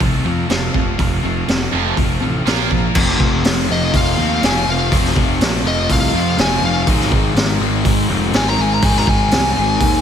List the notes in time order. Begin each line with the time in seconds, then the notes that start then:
0.00 C2 F2 C3 F3 A3 C4 F4 A4 F5, kick, open hi-hat
0.23 F2 C3 F3 A3 C4 F4 A4 F5
0.49 F1 F2 C3 F3 A3 C4 F4 A4 F5, snare, open hi-hat
0.73 F1 F2 C3 F3 A3 C4 F4 A4 F5, kick
0.98 F1 F2 C3 F3 A3 C4 F4 A4 F5, kick, open hi-hat
1.22 F1 F2 C3 F3 A3 C4 F4 A4 F5
1.47 F1 F2 C3 F3 A3 C4 F4 A4 F5, snare, open hi-hat
1.71 F1 F2 C3 F3 A3 C4 F4 A4 F5
1.96 F1 F2 C3 F3 A3 C4 F4 A4 F5, kick, open hi-hat
2.20 A1 F2 C3 F3 A3 C4 F4 A4 F5
2.45 A#1 A#2 F3 A#3 F4 A#4 F5, snare, open hi-hat
2.70 A#2 F3 A#3 F4 A#4 F5, kick
2.95 F1 F2 C3 F3 A3 C4 F4, kick, crash
3.08 snare
3.20 F1, kick
3.44 F1, snare, open hi-hat
3.68 F1 F2 C3 F3 D#5
3.94 F1 F5, kick, open hi-hat
4.17 D#2 F3 A3 C4 F4
4.41 F1 F2 C3 F3 A3 C4 F4, snare, open hi-hat
4.46 G#5
4.66 F1 F5
4.90 F1 F2 C3 F3 A3 C4 F4, kick, open hi-hat
4.94 F3
5.05 snare
5.16 F1, kick
5.40 A#1, snare, open hi-hat
5.64 F1 F2 C3 F3 D#5
5.90 C2 F5, kick, open hi-hat
6.13 F2 F3 A3 C4 F4
6.37 F1 F2 C3 F3 A3 C4 F4 G#5, snare, open hi-hat
6.62 F1 F5
6.86 G#1 G#2 D#3 G#3 C4 D#4, kick, open hi-hat
7.00 snare
7.12 G#1, kick
7.35 G#1, snare, open hi-hat
7.60 G#1 G#2 D#3 G#3
7.85 G#1, kick, open hi-hat
8.08 F1 G#2 D#3 G#3 C4 D#4
8.33 G#1 G#2 D#3 G#3 C4 D#4 G#5, snare, open hi-hat
8.49 A#5
8.58 G#1 G#5
8.74 A#5
8.82 G#1 G#2 D#3 G#3 C4 D#4 G#5, kick, open hi-hat
8.96 A#5, snare
9.07 G#1 G#5, kick
9.31 C2, snare, open hi-hat
9.56 G#1 G#2 D#3 G#3
9.80 D#2, kick, open hi-hat